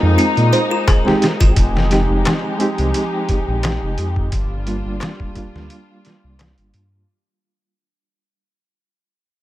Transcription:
Already playing: G#3 A#3 C4 D#4 F4
0.03 F2
0.18 C4, closed hi-hat
0.37 A#2, closed hi-hat
0.53 C5, closed hi-hat
0.71 F4
0.88 G#4, kick, closed hi-hat, darbuka tek
1.05 G#3 C4 D#4 G4, snare
1.22 snare, closed hi-hat
1.40 G#1 F4, kick, closed hi-hat
1.56 F1 F3 G#3 D#4 G4, kick, closed hi-hat
1.77 snare
1.90 G#3 C4 D#4 G4, snare, closed hi-hat
2.10 F1
2.25 snare, closed hi-hat, darbuka tek
2.58 G#3 C4 D#4 G4, closed hi-hat
2.78 C2, closed hi-hat
2.94 closed hi-hat
3.29 kick, closed hi-hat
3.48 A#1
3.63 snare, closed hi-hat, darbuka tek
3.82 F1
3.98 F2, closed hi-hat
4.16 kick
4.32 G1 G3 D4 F4, kick, closed hi-hat
4.66 G3 A#3 D4 F4, closed hi-hat
4.86 G1
5.00 snare, closed hi-hat, darbuka tek
5.20 kick
5.34 G3 A#3 D4 F4, kick, closed hi-hat
5.55 D2, snare
5.70 closed hi-hat
6.05 snare, closed hi-hat
6.24 C2
6.39 snare, closed hi-hat, darbuka tek
6.58 G1, closed hi-hat
6.74 G2, closed hi-hat

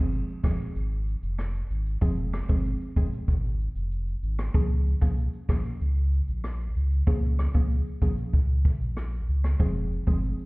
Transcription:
Already playing: G1 F3 G#3 C4 G#4
0.12 shaker
0.28 shaker
0.44 F1 F3 G#3 C4 G#4, kick, cross-stick, shaker
0.60 shaker
0.75 G#1, shaker
0.91 shaker
1.07 shaker
1.23 F1, shaker
1.39 cross-stick, shaker
1.55 shaker
1.70 G#1, shaker
1.86 shaker
2.01 F1 F3 G#3 C4 G#4, kick, shaker
2.18 shaker
2.33 cross-stick, shaker
2.49 G1 F3 G#3 C4 G#4, kick, shaker
2.65 shaker
2.81 shaker
2.96 F1 F3 G#3 C4 G#4, kick, shaker
3.12 shaker
3.28 G#1, kick, shaker
3.44 shaker
3.60 shaker
3.75 F1, shaker
3.91 shaker
4.07 shaker
4.23 G#1, shaker
4.39 cross-stick, shaker
4.54 C#2 F3 A#3 C#4 G#4, kick, shaker
4.70 shaker
4.86 shaker
5.01 C2 F3 A#3 C#4 G#4, kick, shaker
5.18 shaker
5.33 shaker
5.49 A#1 F3 A#3 C#4 G#4, kick, cross-stick, shaker
5.65 shaker
5.81 C#2, shaker
5.97 shaker
6.12 shaker
6.28 A#1, shaker
6.44 cross-stick, shaker
6.60 shaker
6.76 C#2, shaker
6.91 shaker
7.07 C#2 F3 A#3 C#4 G#4, kick, shaker
7.23 shaker
7.39 cross-stick, shaker
7.54 C#2 F3 A#3 C#4 G#4, kick, shaker
7.70 shaker
7.86 shaker
8.02 A#1 F3 A#3 C#4 G#4, kick, shaker
8.18 shaker
8.33 C#2, kick, shaker
8.49 shaker
8.65 kick, shaker
8.81 A#1, shaker
8.97 cross-stick, shaker
9.13 shaker
9.28 C#2, shaker
9.44 cross-stick, shaker
9.59 F1 F3 G#3 C4 G#4, kick, shaker
9.76 shaker
9.92 shaker
10.07 G1 F3 G#3 C4 G#4, kick, shaker
10.23 shaker
10.39 shaker

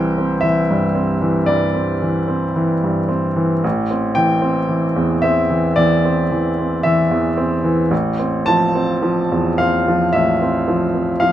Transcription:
Already playing: C2 E3 C4 G5
0.18 C4
0.41 E3 E5
0.70 G2
0.95 C4
1.22 E3
1.46 G2 D5
1.75 C4
2.02 E3
2.28 C4
2.56 E3
2.84 G2
3.09 C4
3.36 E3
3.64 A1
3.91 C4
4.15 E3 G5
4.42 C4
4.69 E3
4.96 E2
5.22 C4 E5
5.50 E3
5.76 E2 D5
6.05 C4
6.32 E3
6.59 C4
6.83 E3 E5
7.11 E2
7.37 C4
7.64 E3
7.91 A1
8.19 C4
8.46 F3 A5
8.75 C4
9.03 F3
9.32 E2
9.58 C4 F5
9.88 F3
10.13 A1 E5
10.42 C4
10.68 F3
10.95 C4
11.20 F3 F5

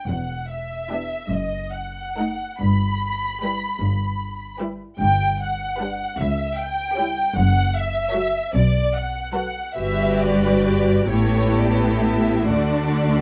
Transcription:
0.07 E1 E2 F#5
0.51 E5
0.90 B3 D4 E4 G4
1.30 F#1 F#2 D#5
1.73 F#5
2.18 A3 D#4 A4
2.61 G1 G2 B5
3.42 G3 E4 G4 B4
3.79 G1 G2
4.60 G3 E4 G4 B4
4.98 G1 G2 G5
5.41 F#5
5.78 G3 D4 G4 B4
6.18 C#2 E5
6.58 G5
6.95 G3 E4 G4 C#5
7.36 F#1 F#2 F#5
7.76 E5
8.12 F#3 F#4 A4 C#5
8.53 B1 B2 D5
8.94 F#5
9.35 F#3 F#4 A4 B4 F#5
9.76 G1 G2 G3 F#4 G4 B4 E5
10.20 D5
11.09 A1 A2 B3 E4 G4 A4 C#5
11.60 D5
11.72 C#5
11.81 B4
11.90 C#5
12.02 E5
12.48 D2 D3 A3 D4 F#4 A4 D5

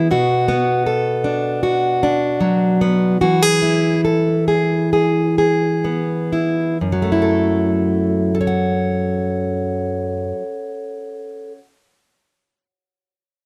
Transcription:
Already playing: E3 B3
0.11 B2 F#4
0.48 B3
0.86 A4
1.24 D4
1.63 F#4
2.03 D4
2.40 F#3
2.81 B3
3.21 E3 F#4
3.43 G#4
3.62 E4
4.05 A4
4.48 G#4
4.93 G#4
5.38 G#4
5.84 B3
6.33 E4
6.81 F#2
6.92 F#3
7.02 A3
7.12 E4
7.22 A4
8.35 A4
8.41 C#5
8.47 F#5

